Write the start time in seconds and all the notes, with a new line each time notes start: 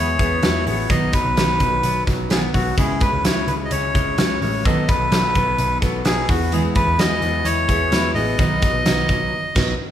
Already playing: E2 E3 G#3 B3 E4 G#4 C#5
0.19 E2 B3 E4 G#4, kick, closed hi-hat
0.42 E2 G#3 B3 E4 G#4, snare, closed hi-hat
0.66 A1 B3 E4 G#4 C#5, open hi-hat
0.89 B1 B2 D#3 F#3 B3 D#4 D#5, kick, closed hi-hat
1.13 F#3 D#4 B4, kick, closed hi-hat
1.25 B1
1.36 B1 D#3 F#3 B3 D#4, snare, closed hi-hat
1.60 B1 F#3, kick, closed hi-hat
1.83 B1 B3, closed hi-hat
2.07 B1 F#3 B3 D#4, kick, snare, closed hi-hat
2.30 B1 D#3 F#3 B3 D#4 G#4, snare, closed hi-hat
2.53 B1 F#3 B3 D#4 F#4, kick, open hi-hat
2.78 C#2 C#3 G#3 C#4 E4 G#4, kick, closed hi-hat
3.01 G#3 C#4 E4 B4, kick, closed hi-hat
3.13 C#2
3.24 C#2 C#3 G#3 C#4 E4 C#5, snare, closed hi-hat
3.47 C#2 G#3 B4, closed hi-hat
3.65 D#5
3.71 C#2 C#4 C#5, closed hi-hat
3.94 C#2 G#3 C#4 E4, kick, closed hi-hat
4.18 C#2 C#3 G#3 C#4 E4, snare, closed hi-hat
4.41 A1 G#3 C#4 E4 C#5, open hi-hat
4.65 B1 B2 D#3 F#3 B3 D#4 A4 D#5, kick, closed hi-hat
4.88 F#3 B3 A4 B4, kick, closed hi-hat
5.00 B1
5.11 B1 F#3 B3 D#4 A4, snare, closed hi-hat
5.35 B1 B3, kick, closed hi-hat
5.58 B1 D#4, closed hi-hat
5.82 B1 F#3 B3 D#4 A4, kick, snare, closed hi-hat
6.05 B1 F#3 B3 D#4 G#4 A4, snare, closed hi-hat
6.29 E2 E3 B3 E4 F#4 G#4, kick, open hi-hat
6.52 E3 G#3 B3 E4 G#4, closed hi-hat
6.75 B3 E4 G#4 B4, kick, closed hi-hat
6.87 E2
6.98 E2 G#3 B3 E4 G#4 D#5, snare, closed hi-hat
7.21 E2 B3, closed hi-hat
7.45 E2 E4 C#5, closed hi-hat
7.68 E2 B3 E4 G#4, kick, closed hi-hat
7.91 E2 G#3 B3 E4 G#4, snare, closed hi-hat
8.15 A1 B3 E4 G#4 D#5, open hi-hat
8.39 B1 B2 D#3 F#3 B3 D#4, kick, closed hi-hat
8.62 F#3 B3 D#4, kick, closed hi-hat
8.73 B1
8.85 B1 D#3 F#3 B3 D#4, snare, closed hi-hat
9.09 B1 F#3, kick, closed hi-hat
9.55 B1 F#3 B3 D#4, kick, snare, crash